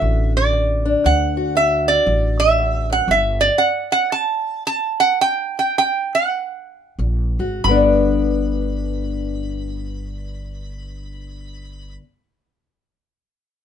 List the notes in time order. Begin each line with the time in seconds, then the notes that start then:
Already playing: D3 A3 D4 F#4 E5
0.01 A1 D2
0.37 D5
0.53 D2
0.85 D4
1.04 D2 F#5
1.37 F#4
1.55 D2 E5
1.88 D5
2.06 A1 D2
2.40 E5
2.58 E2
2.90 F#2 F#5
3.08 G1 G2 E5
3.41 D5
3.58 F#5
3.92 F#5
4.12 A5
4.67 A5
5.00 F#5
5.21 G5
5.59 G5
5.78 G5
6.15 F#5
6.99 A#1 G#2
7.39 G#1 F#4
7.64 G1 G2 D3 B5
7.69 B3 D4